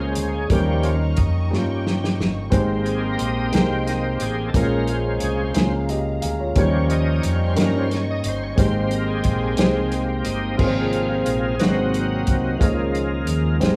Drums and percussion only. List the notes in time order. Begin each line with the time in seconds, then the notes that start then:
0.15 closed hi-hat
0.50 kick, closed hi-hat
0.83 closed hi-hat
1.17 kick, closed hi-hat
1.53 snare
1.87 snare
2.04 snare
2.20 snare
2.52 kick, closed hi-hat
2.86 closed hi-hat
3.19 closed hi-hat
3.53 snare, closed hi-hat
3.87 snare, closed hi-hat
4.20 closed hi-hat
4.54 kick, closed hi-hat
4.88 closed hi-hat
5.20 closed hi-hat
5.55 snare, closed hi-hat
5.89 closed hi-hat
6.22 closed hi-hat
6.56 kick, closed hi-hat
6.90 closed hi-hat
7.23 closed hi-hat
7.57 snare, closed hi-hat
7.91 snare, closed hi-hat
8.24 closed hi-hat
8.58 kick, closed hi-hat
8.91 closed hi-hat
9.24 kick, closed hi-hat
9.57 snare, closed hi-hat
9.92 closed hi-hat
10.25 closed hi-hat
10.59 kick, crash
10.93 closed hi-hat
11.26 closed hi-hat
11.60 snare, closed hi-hat
11.94 closed hi-hat
12.27 kick, closed hi-hat
12.61 kick, closed hi-hat
12.95 closed hi-hat
13.27 closed hi-hat
13.61 snare, closed hi-hat